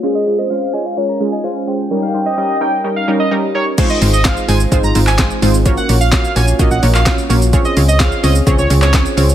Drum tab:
CC |----------------|----------------|x---------------|----------------|
HH |----------------|----------------|x-o-x-o-x-o-x-o-|x-o-x-o-x-o-x-o-|
SH |----------------|----------------|xxxxxxxxxxxxxxxx|xxxxxxxxxxxxxxxx|
CP |----------------|----------------|----x------xx---|----x------xx---|
SD |----------------|----------------|----o-------o---|----o-------o---|
BD |----------------|----------------|o---o---o---o---|o---o---o---o---|

CC |----------------|
HH |x-o-x-o-x-o-x-o-|
SH |xxxxxxxxxxxxxxxx|
CP |----x------xx---|
SD |----o-------o---|
BD |o---o---o---o---|